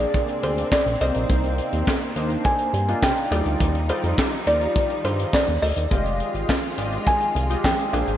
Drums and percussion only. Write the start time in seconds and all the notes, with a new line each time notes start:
0.00 closed hi-hat
0.14 kick, closed hi-hat
0.28 closed hi-hat
0.43 closed hi-hat
0.58 closed hi-hat
0.72 kick, snare, clap
0.86 closed hi-hat
1.01 closed hi-hat
1.14 closed hi-hat
1.29 kick, closed hi-hat
1.44 closed hi-hat
1.58 closed hi-hat
1.73 closed hi-hat
1.87 kick, snare, clap
2.01 closed hi-hat
2.16 closed hi-hat
2.30 closed hi-hat
2.44 kick, closed hi-hat
2.59 closed hi-hat
2.74 closed hi-hat
2.88 closed hi-hat
3.03 kick, snare, clap
3.17 closed hi-hat
3.32 closed hi-hat
3.46 closed hi-hat
3.60 kick, closed hi-hat
3.75 closed hi-hat
3.89 closed hi-hat
4.04 closed hi-hat
4.18 kick, snare, clap
4.32 closed hi-hat
4.47 closed hi-hat
4.61 closed hi-hat
4.76 kick, closed hi-hat
4.90 closed hi-hat
5.05 closed hi-hat
5.20 closed hi-hat
5.33 kick, snare, clap
5.48 closed hi-hat
5.63 open hi-hat
5.77 closed hi-hat
5.91 kick, closed hi-hat
6.06 closed hi-hat
6.20 closed hi-hat
6.35 closed hi-hat
6.49 kick, snare, clap
6.63 closed hi-hat
6.78 closed hi-hat
6.92 closed hi-hat
7.06 kick, closed hi-hat
7.21 closed hi-hat
7.36 closed hi-hat
7.50 closed hi-hat
7.64 kick, snare, clap
7.79 closed hi-hat
7.94 closed hi-hat
8.07 closed hi-hat